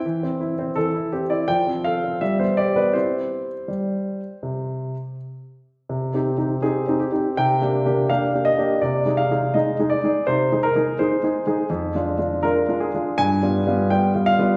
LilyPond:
\new Staff \with { instrumentName = "Grand piano" } { \time 4/4 \key c \major \tempo 4 = 83 << { r4 a'8 g'16 d''16 g''8 f''8 e''16 c''16 d''16 b'16 | c''2. r4 | \key c \minor r4 aes'8 g'8 g''4 f''8 ees''8 | d''8 f''8 ees''8 d''8 c''8 bes'8 c''4 |
r4 bes'8 aes'8 aes''4 g''8 f''8 | } \\ { e16 c'16 e'16 c'16 e16 e'16 c'16 e'16 f16 c'16 a'16 c'16 g16 b16 g'16 b16 | <c' e' g'>4 g4 c4 r4 | \tuplet 3/2 { c8 <c' ees' g'>8 <c' ees' g'>8 <c' ees' g'>8 <c' ees' g'>8 <c' ees' g'>8 c8 <bes d' g'>8 <bes d' g'>8 <bes d' g'>8 <bes d' g'>8 <bes d' g'>8 } | \tuplet 3/2 { c8 <aes ees' aes'>8 <aes ees' aes'>8 <aes ees' aes'>8 <aes ees' aes'>8 <aes ees' aes'>8 c8 <aes ees' aes'>8 <aes ees' aes'>8 <aes ees' aes'>8 <aes ees' aes'>8 <aes ees' aes'>8 } |
\tuplet 3/2 { f,8 <aes d' f'>8 <aes d' f'>8 <aes d' f'>8 <aes d' f'>8 <aes d' f'>8 g,8 <g b f'>8 <g b f'>8 <g b f'>8 <g b f'>8 <g b f'>8 } | } >> }